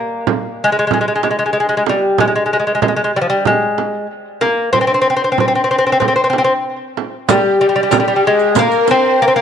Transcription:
Already playing: lute A#3
0.27 frame drum
0.64 lute G#3
0.72 lute G#3
0.79 lute G#3
0.87 lute G#3, frame drum
0.93 lute G#3
1.01 lute G#3
1.08 lute G#3
1.15 lute G#3
1.23 lute G#3, frame drum
1.31 lute G#3
1.39 lute G#3
1.46 lute G#3
1.53 lute G#3
1.60 lute G#3
1.69 lute G#3
1.77 lute G#3
1.86 lute G3, frame drum
2.18 lute G#3, frame drum
2.28 lute G#3
2.35 lute G#3
2.46 lute G#3
2.53 lute G#3
2.60 lute G#3
2.67 lute G#3
2.75 lute G#3
2.82 lute G#3, frame drum
2.88 lute G#3
2.96 lute G#3
3.04 lute G#3
3.16 lute G3
3.21 lute F3
3.30 lute G3
3.45 lute G#3, frame drum
3.78 frame drum
4.41 lute A#3, frame drum
4.73 lute C4, frame drum
4.81 lute C4
4.87 lute C4
4.94 lute C4
5.02 lute C4
5.10 lute C4
5.17 lute C4
5.24 lute C4
5.32 lute C4
5.38 lute C4, frame drum
5.48 lute C4
5.55 lute C4
5.64 lute C4
5.71 lute C4
5.78 lute C4
5.87 lute C4
5.92 lute C4
6.00 lute C4, frame drum
6.08 lute C4
6.16 lute C4
6.24 lute C4
6.30 lute C4, frame drum
6.38 lute C4
6.44 lute C4
6.97 frame drum
7.29 lute G3, violin section G4, kamancheh G4, riq, frame drum
7.60 lute G3, violin section G4, kamancheh G4
7.69 lute G3
7.76 lute G3
7.83 lute G3
7.91 lute G3, riq, frame drum
8.00 lute G3
8.08 lute G3
8.16 lute G3
8.24 lute G#3, kamancheh G#4
8.39 riq
8.55 lute A#3, kamancheh A#4, violin section A#4, riq, frame drum
8.72 riq
8.87 lute C4, violin section C5, riq, frame drum
9.19 lute A#3, violin section A#4, kamancheh A#4
9.28 lute C4
9.33 lute A#3, kamancheh A#4, violin section A#4

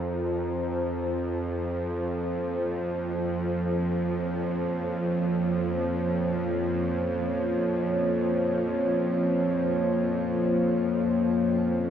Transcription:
Already playing: synth drone F2 F3, analog synth pad F4 C5 D#5 A#5
1.41 analog synth pad F3
1.94 analog synth pad A#3
2.18 analog synth pad C#5

